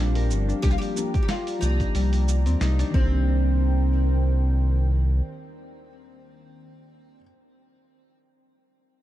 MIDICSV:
0, 0, Header, 1, 7, 480
1, 0, Start_track
1, 0, Key_signature, -3, "minor"
1, 0, Tempo, 659341
1, 462, Time_signature, 4, 2, 24, 8
1, 6569, End_track
2, 0, Start_track
2, 0, Title_t, "Analog synth pad"
2, 0, Program_c, 0, 89
2, 0, Note_on_c, 0, 67, 81
2, 0, Note_on_c, 0, 74, 72
2, 0, Note_on_c, 0, 77, 73
2, 0, Note_on_c, 0, 79, 91
2, 432, Note_off_c, 0, 79, 0
2, 442, Note_off_c, 0, 77, 0
2, 443, Note_off_c, 0, 74, 0
2, 466, Note_on_c, 0, 82, 90
2, 467, Note_on_c, 0, 74, 73
2, 2112, Note_off_c, 0, 67, 0
2, 2127, Note_off_c, 0, 82, 0
2, 2128, Note_off_c, 0, 74, 0
2, 2137, Note_on_c, 0, 72, 73
2, 2137, Note_on_c, 0, 79, 89
2, 2138, Note_on_c, 0, 51, 81
2, 2138, Note_on_c, 0, 70, 72
2, 4853, Note_off_c, 0, 51, 0
2, 4853, Note_off_c, 0, 70, 0
2, 4853, Note_off_c, 0, 72, 0
2, 4853, Note_off_c, 0, 79, 0
2, 6569, End_track
3, 0, Start_track
3, 0, Title_t, "Oud"
3, 0, Program_c, 1, 24
3, 0, Note_on_c, 1, 62, 93
3, 454, Note_on_c, 1, 67, 103
3, 480, Note_off_c, 1, 62, 0
3, 512, Note_off_c, 1, 67, 0
3, 515, Note_on_c, 1, 65, 90
3, 565, Note_off_c, 1, 65, 0
3, 568, Note_on_c, 1, 67, 106
3, 884, Note_off_c, 1, 67, 0
3, 892, Note_on_c, 1, 67, 73
3, 932, Note_off_c, 1, 67, 0
3, 935, Note_on_c, 1, 65, 95
3, 1171, Note_on_c, 1, 63, 85
3, 1186, Note_off_c, 1, 65, 0
3, 2108, Note_off_c, 1, 63, 0
3, 2141, Note_on_c, 1, 60, 84
3, 5231, Note_off_c, 1, 60, 0
3, 6569, End_track
4, 0, Start_track
4, 0, Title_t, "Harp"
4, 0, Program_c, 2, 46
4, 0, Note_on_c, 2, 55, 99
4, 0, Note_on_c, 2, 60, 80
4, 0, Note_on_c, 2, 62, 82
4, 0, Note_on_c, 2, 72, 78
4, 112, Note_on_c, 2, 70, 73
4, 349, Note_off_c, 2, 62, 0
4, 352, Note_on_c, 2, 62, 74
4, 450, Note_off_c, 2, 55, 0
4, 458, Note_on_c, 2, 55, 97
4, 703, Note_off_c, 2, 72, 0
4, 830, Note_on_c, 2, 67, 100
4, 1309, Note_off_c, 2, 62, 0
4, 1312, Note_on_c, 2, 62, 77
4, 1412, Note_off_c, 2, 55, 0
4, 1420, Note_on_c, 2, 55, 95
4, 1656, Note_off_c, 2, 70, 0
4, 1789, Note_off_c, 2, 60, 0
4, 1792, Note_on_c, 2, 60, 75
4, 1900, Note_on_c, 2, 63, 106
4, 1944, Note_off_c, 2, 62, 0
4, 2033, Note_on_c, 2, 62, 96
4, 2076, Note_off_c, 2, 63, 0
4, 2136, Note_off_c, 2, 60, 0
4, 2139, Note_on_c, 2, 60, 94
4, 2179, Note_off_c, 2, 55, 0
4, 2544, Note_off_c, 2, 67, 0
4, 4070, Note_off_c, 2, 62, 0
4, 4323, Note_off_c, 2, 60, 0
4, 6569, End_track
5, 0, Start_track
5, 0, Title_t, "Felt piano"
5, 0, Program_c, 3, 0
5, 0, Note_on_c, 3, 53, 91
5, 0, Note_on_c, 3, 55, 82
5, 0, Note_on_c, 3, 60, 86
5, 0, Note_on_c, 3, 62, 104
5, 427, Note_off_c, 3, 53, 0
5, 432, Note_off_c, 3, 55, 0
5, 435, Note_off_c, 3, 60, 0
5, 441, Note_off_c, 3, 62, 0
5, 452, Note_on_c, 3, 53, 89
5, 456, Note_on_c, 3, 55, 78
5, 461, Note_on_c, 3, 58, 84
5, 463, Note_on_c, 3, 62, 100
5, 671, Note_off_c, 3, 53, 0
5, 674, Note_off_c, 3, 55, 0
5, 676, Note_off_c, 3, 58, 0
5, 677, Note_off_c, 3, 62, 0
5, 690, Note_on_c, 3, 53, 90
5, 695, Note_on_c, 3, 55, 83
5, 698, Note_on_c, 3, 58, 86
5, 705, Note_on_c, 3, 62, 99
5, 821, Note_off_c, 3, 53, 0
5, 823, Note_off_c, 3, 55, 0
5, 825, Note_off_c, 3, 58, 0
5, 828, Note_off_c, 3, 62, 0
5, 1158, Note_on_c, 3, 53, 90
5, 1167, Note_on_c, 3, 55, 91
5, 1178, Note_on_c, 3, 58, 86
5, 1187, Note_on_c, 3, 74, 102
5, 2113, Note_on_c, 3, 51, 88
5, 2118, Note_off_c, 3, 55, 0
5, 2129, Note_on_c, 3, 55, 83
5, 2130, Note_off_c, 3, 53, 0
5, 2132, Note_off_c, 3, 58, 0
5, 2143, Note_on_c, 3, 58, 83
5, 2145, Note_off_c, 3, 74, 0
5, 2158, Note_on_c, 3, 62, 99
5, 5202, Note_off_c, 3, 51, 0
5, 5218, Note_off_c, 3, 55, 0
5, 5233, Note_off_c, 3, 58, 0
5, 5247, Note_off_c, 3, 62, 0
5, 6569, End_track
6, 0, Start_track
6, 0, Title_t, "Analog synth bass"
6, 0, Program_c, 4, 38
6, 0, Note_on_c, 4, 34, 86
6, 224, Note_on_c, 4, 31, 79
6, 235, Note_off_c, 4, 34, 0
6, 387, Note_off_c, 4, 31, 0
6, 463, Note_on_c, 4, 36, 103
6, 548, Note_off_c, 4, 36, 0
6, 1182, Note_on_c, 4, 36, 82
6, 1346, Note_off_c, 4, 36, 0
6, 1418, Note_on_c, 4, 36, 89
6, 1793, Note_on_c, 4, 39, 87
6, 1804, Note_off_c, 4, 36, 0
6, 1863, Note_off_c, 4, 39, 0
6, 1900, Note_on_c, 4, 36, 89
6, 2065, Note_off_c, 4, 36, 0
6, 2144, Note_on_c, 4, 36, 96
6, 3794, Note_off_c, 4, 36, 0
6, 6569, End_track
7, 0, Start_track
7, 0, Title_t, "Drums"
7, 112, Note_on_c, 9, 46, 49
7, 185, Note_off_c, 9, 46, 0
7, 224, Note_on_c, 9, 69, 75
7, 297, Note_off_c, 9, 69, 0
7, 359, Note_on_c, 9, 69, 32
7, 432, Note_off_c, 9, 69, 0
7, 459, Note_on_c, 9, 46, 70
7, 462, Note_on_c, 9, 36, 110
7, 465, Note_on_c, 9, 69, 41
7, 532, Note_off_c, 9, 46, 0
7, 534, Note_off_c, 9, 36, 0
7, 537, Note_off_c, 9, 69, 0
7, 594, Note_on_c, 9, 46, 44
7, 599, Note_on_c, 9, 69, 29
7, 667, Note_off_c, 9, 46, 0
7, 672, Note_off_c, 9, 69, 0
7, 705, Note_on_c, 9, 69, 79
7, 778, Note_off_c, 9, 69, 0
7, 831, Note_on_c, 9, 46, 32
7, 835, Note_on_c, 9, 36, 101
7, 837, Note_on_c, 9, 69, 34
7, 904, Note_off_c, 9, 46, 0
7, 908, Note_off_c, 9, 36, 0
7, 909, Note_off_c, 9, 69, 0
7, 937, Note_on_c, 9, 38, 99
7, 937, Note_on_c, 9, 46, 67
7, 943, Note_on_c, 9, 69, 46
7, 1010, Note_off_c, 9, 38, 0
7, 1010, Note_off_c, 9, 46, 0
7, 1015, Note_off_c, 9, 69, 0
7, 1070, Note_on_c, 9, 46, 47
7, 1076, Note_on_c, 9, 69, 31
7, 1143, Note_off_c, 9, 46, 0
7, 1148, Note_off_c, 9, 69, 0
7, 1182, Note_on_c, 9, 69, 74
7, 1254, Note_off_c, 9, 69, 0
7, 1310, Note_on_c, 9, 46, 30
7, 1314, Note_on_c, 9, 36, 63
7, 1315, Note_on_c, 9, 69, 31
7, 1383, Note_off_c, 9, 46, 0
7, 1387, Note_off_c, 9, 36, 0
7, 1388, Note_off_c, 9, 69, 0
7, 1418, Note_on_c, 9, 46, 69
7, 1424, Note_on_c, 9, 69, 41
7, 1491, Note_off_c, 9, 46, 0
7, 1496, Note_off_c, 9, 69, 0
7, 1549, Note_on_c, 9, 46, 49
7, 1555, Note_on_c, 9, 69, 32
7, 1622, Note_off_c, 9, 46, 0
7, 1627, Note_off_c, 9, 69, 0
7, 1663, Note_on_c, 9, 69, 80
7, 1736, Note_off_c, 9, 69, 0
7, 1791, Note_on_c, 9, 46, 33
7, 1796, Note_on_c, 9, 69, 32
7, 1863, Note_off_c, 9, 46, 0
7, 1869, Note_off_c, 9, 69, 0
7, 1900, Note_on_c, 9, 38, 111
7, 1900, Note_on_c, 9, 46, 70
7, 1906, Note_on_c, 9, 69, 42
7, 1973, Note_off_c, 9, 38, 0
7, 1973, Note_off_c, 9, 46, 0
7, 1978, Note_off_c, 9, 69, 0
7, 2032, Note_on_c, 9, 46, 49
7, 2038, Note_on_c, 9, 69, 32
7, 2105, Note_off_c, 9, 46, 0
7, 2110, Note_off_c, 9, 69, 0
7, 2141, Note_on_c, 9, 36, 119
7, 2214, Note_off_c, 9, 36, 0
7, 6569, End_track
0, 0, End_of_file